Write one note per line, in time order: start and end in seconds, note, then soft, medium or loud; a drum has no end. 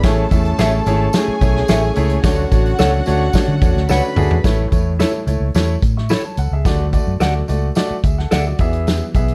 0.03 0.24 A1 loud
0.03 0.83 A2 medium
0.03 2.22 A3 medium
0.03 0.22 A3 loud
0.03 4.40 C#4 medium
0.03 0.23 E4 loud
0.03 0.23 G#4 loud
0.03 1.12 A4 medium
0.03 2.21 C#5 medium
0.03 0.23 C#5 loud
0.03 1.12 A5 loud
0.03 kick loud
0.03 snare loud
0.03 closed hi-hat medium
0.03 tambourine loud
0.31 0.52 E2 medium
0.31 0.49 A3 medium
0.31 0.50 E4 medium
0.31 0.50 G#4 medium
0.31 0.50 E5 medium
0.31 kick medium
0.31 closed hi-hat medium
0.31 tambourine medium
0.45 closed hi-hat soft
0.58 0.79 A1 loud
0.58 0.77 A3 loud
0.58 0.77 E4 medium
0.58 0.71 G#4 medium
0.58 0.77 G#4 medium
0.58 0.78 C#5 loud
0.58 0.72 C#5 loud
0.58 0.72 E5 medium
0.58 snare loud
0.58 closed hi-hat medium
0.58 tambourine loud
0.86 1.07 G#1 loud
0.86 1.05 A3 loud
0.86 1.05 E4 loud
0.86 1.05 G#4 loud
0.86 1.05 C#5 loud
0.86 closed hi-hat medium
0.86 tambourine medium
1.13 1.32 A3 medium
1.13 1.33 E4 medium
1.13 2.22 G#4 medium
1.13 1.33 G#4 medium
1.13 1.33 C#5 loud
1.13 2.22 G#5 loud
1.13 snare loud
1.13 closed hi-hat medium
1.13 tambourine loud
1.28 muted fingered electric bass stroke medium
1.41 1.62 B1 loud
1.41 1.60 A3 medium
1.41 1.60 E4 medium
1.41 1.60 G#4 medium
1.41 1.60 C#5 loud
1.41 kick medium
1.41 closed hi-hat medium
1.41 tambourine medium
1.56 snare soft
1.68 1.89 A1 medium
1.68 1.88 A3 medium
1.68 1.88 E4 medium
1.68 1.81 G#4 medium
1.68 1.88 G#4 medium
1.68 1.81 C#5 medium
1.68 1.88 C#5 medium
1.68 1.82 E5 loud
1.68 snare loud
1.68 closed hi-hat medium
1.68 tambourine loud
1.95 2.17 C#2 medium
1.95 2.15 A3 loud
1.95 2.15 E4 loud
1.95 2.15 G#4 loud
1.95 2.15 C#5 loud
1.95 closed hi-hat medium
1.95 tambourine soft
2.09 closed hi-hat medium
2.23 2.44 D2 loud
2.23 4.42 D3 medium
2.23 3.03 D3 medium
2.23 2.42 A3 loud
2.23 2.43 D4 loud
2.23 4.42 F#4 medium
2.23 3.86 F#4 medium
2.23 2.43 F#4 loud
2.23 2.43 C#5 loud
2.23 3.86 F#5 loud
2.23 kick loud
2.23 snare loud
2.23 closed hi-hat medium
2.23 tambourine loud
2.51 2.72 A1 medium
2.51 2.70 A3 medium
2.51 2.70 D4 medium
2.51 2.70 F#4 medium
2.51 2.70 C#5 loud
2.51 kick medium
2.51 closed hi-hat medium
2.51 tambourine medium
2.66 closed hi-hat medium
2.79 3.00 C#2 loud
2.79 2.97 A3 loud
2.79 2.98 D4 medium
2.79 2.98 F#4 medium
2.79 2.91 A4 medium
2.79 2.91 C#5 medium
2.79 2.98 C#5 loud
2.79 2.92 F#5 medium
2.79 snare loud
2.79 closed hi-hat medium
2.79 tambourine loud
3.06 3.28 D2 medium
3.06 3.25 A3 loud
3.06 3.25 D4 medium
3.06 3.25 F#4 loud
3.06 3.25 C#5 loud
3.06 closed hi-hat medium
3.06 tambourine medium
3.33 3.53 A3 medium
3.33 3.53 D4 medium
3.33 3.53 F#4 medium
3.33 3.53 C#5 medium
3.33 kick medium
3.33 snare loud
3.33 closed hi-hat medium
3.33 tambourine loud
3.48 3.58 D3 medium
3.61 3.72 E2 medium
3.61 3.80 A3 medium
3.61 3.80 D4 medium
3.61 3.80 F#4 medium
3.61 3.80 C#5 medium
3.61 kick medium
3.61 closed hi-hat medium
3.61 tambourine medium
3.75 3.86 D2 medium
3.75 snare soft
3.89 4.00 C#2 medium
3.89 4.07 A3 medium
3.89 4.08 D4 medium
3.89 4.08 F#4 medium
3.89 4.01 A4 medium
3.89 4.44 B4 medium
3.89 4.08 C#5 medium
3.89 4.02 C#5 medium
3.89 4.02 F#5 medium
3.89 4.43 B5 medium
3.89 snare medium
3.89 tambourine loud
4.16 4.28 D2 loud
4.16 4.35 A3 loud
4.16 4.35 D4 loud
4.16 4.35 F#4 loud
4.16 4.36 G#4 loud
4.16 mid tom medium
4.16 tambourine medium
4.31 4.41 E2 medium
4.31 floor tom medium
4.44 4.65 A1 medium
4.44 5.23 A2 medium
4.44 4.63 A3 loud
4.44 4.63 E4 loud
4.44 4.63 C#5 loud
4.44 kick loud
4.44 snare loud
4.44 closed hi-hat medium
4.44 tambourine medium
4.72 5.03 E2 medium
4.72 4.90 A3 medium
4.72 4.91 E4 medium
4.72 4.91 C#5 medium
4.72 kick medium
4.72 closed hi-hat medium
4.72 tambourine medium
5.00 5.18 A3 medium
5.00 5.12 E4 medium
5.00 5.18 E4 medium
5.00 5.12 A4 medium
5.00 5.19 C#5 medium
5.00 5.12 C#5 medium
5.00 snare loud
5.00 closed hi-hat medium
5.00 tambourine medium
5.26 5.37 C#2 medium
5.26 5.45 A3 medium
5.26 5.46 E4 medium
5.26 5.46 C#5 medium
5.26 closed hi-hat medium
5.26 tambourine medium
5.40 5.51 C#2 medium
5.54 5.75 E2 medium
5.54 5.73 A3 loud
5.54 5.74 E4 loud
5.54 5.74 C#5 loud
5.54 snare medium
5.54 closed hi-hat medium
5.54 tambourine medium
5.82 6.13 A2 medium
5.82 kick medium
5.82 closed hi-hat medium
5.82 tambourine soft
5.97 6.10 E5 soft
5.97 6.10 C#6 medium
5.97 snare soft
6.09 6.22 E4 medium
6.09 6.22 A4 medium
6.09 6.23 C#5 medium
6.09 6.23 B5 medium
6.09 snare loud
6.09 closed hi-hat medium
6.09 tambourine loud
6.25 6.38 C#5 medium
6.25 6.38 A5 medium
6.37 6.48 C#2 medium
6.37 6.52 A4 medium
6.37 6.51 F#5 medium
6.37 closed hi-hat medium
6.37 tambourine soft
6.51 6.62 C#2 medium
6.51 6.79 G#4 medium
6.51 6.79 E5 medium
6.65 6.96 D2 loud
6.65 7.45 D3 medium
6.65 6.84 A3 loud
6.65 6.84 F#4 medium
6.65 6.84 D5 loud
6.65 kick loud
6.65 snare loud
6.65 closed hi-hat medium
6.65 tambourine medium
6.92 7.11 A3 medium
6.92 7.12 F#4 medium
6.92 7.12 D5 medium
6.92 kick medium
6.92 closed hi-hat medium
6.92 tambourine medium
7.07 7.17 F#2 medium
7.20 7.41 D2 medium
7.20 7.39 A3 medium
7.20 7.39 F#4 medium
7.20 7.33 A4 medium
7.20 7.33 D5 medium
7.20 7.40 D5 medium
7.20 7.33 F#5 medium
7.20 snare loud
7.20 closed hi-hat medium
7.20 tambourine medium
7.48 7.69 C#2 medium
7.48 7.67 A3 medium
7.48 7.67 F#4 medium
7.48 7.67 D5 medium
7.48 closed hi-hat medium
7.48 tambourine soft
7.75 7.94 A3 loud
7.75 7.95 F#4 medium
7.75 7.95 D5 loud
7.75 snare loud
7.75 closed hi-hat medium
7.75 tambourine medium
7.91 muted fingered electric bass stroke soft
8.04 8.24 D2 medium
8.04 8.18 G#4 soft
8.04 8.17 E5 medium
8.04 kick medium
8.04 closed hi-hat medium
8.04 tambourine medium
8.18 8.32 A4 medium
8.18 8.31 F#5 medium
8.18 snare soft
8.31 8.52 D2 medium
8.31 8.46 G#4 medium
8.31 8.43 A4 medium
8.31 8.44 D5 medium
8.31 8.45 E5 medium
8.31 8.44 F#5 medium
8.31 snare loud
8.31 closed hi-hat medium
8.31 tambourine loud
8.47 8.73 F#4 medium
8.47 8.72 D5 medium
8.58 9.00 E2 medium
8.58 9.35 E3 medium
8.58 9.04 B3 medium
8.58 9.04 G#4 medium
8.58 9.04 E5 loud
8.58 kick medium
8.58 closed hi-hat medium
8.58 tambourine soft
8.73 closed hi-hat medium
8.87 snare loud
8.87 closed hi-hat medium
8.87 tambourine medium
9.14 9.35 B1 medium
9.14 9.33 B3 medium
9.14 9.33 G#4 medium
9.14 9.34 E5 medium
9.14 kick medium
9.14 closed hi-hat medium
9.14 tambourine medium
9.28 closed hi-hat soft